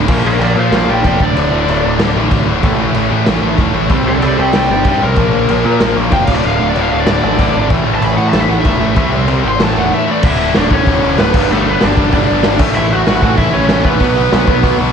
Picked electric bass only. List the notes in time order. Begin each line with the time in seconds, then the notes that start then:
0.08 A#1
0.24 A#1
0.39 A#1
0.56 A#2
0.71 A#1
0.88 A#1
1.04 F1
1.20 D1
1.35 D1
1.52 D1
1.68 D1
1.84 D1
2.00 D1
2.16 A1
2.31 A1
2.46 D1
2.63 A1
2.79 A1
2.95 A1
3.11 A2
3.28 A1
3.41 A1
3.58 E1
3.73 A1
3.90 C2
4.06 C2
4.22 C2
4.39 C2
4.55 C2
4.70 G1
4.85 G2
5.03 B1
5.17 A#1
5.33 A#1
5.50 A#1
5.65 A#2
5.81 A#1
5.96 A#1
6.12 F1
6.28 D1
6.44 D1
6.61 D1
6.77 D1
6.92 D1
7.07 D1
7.23 A1
7.39 A1
7.55 G#1
7.70 A1
7.86 A1
8.02 A1
8.17 A2
8.33 A1
8.49 A1
8.65 E1
8.80 A1
8.97 C2
9.12 C2
9.27 C2
9.45 G#1
9.60 A1
9.76 E1
10.23 D1
10.56 D1
10.71 D1
10.87 D1
11.03 D1
11.18 D1
11.34 G1
11.50 G1
11.83 G1
11.97 G1
12.13 G1
12.30 G1
12.45 G#1
12.59 A1
12.76 A1
13.07 A1
13.23 A1
13.38 A1
13.54 A1
13.68 A1
13.84 A1
14.00 B1
14.32 B1
14.47 B1
14.63 B1
14.80 B1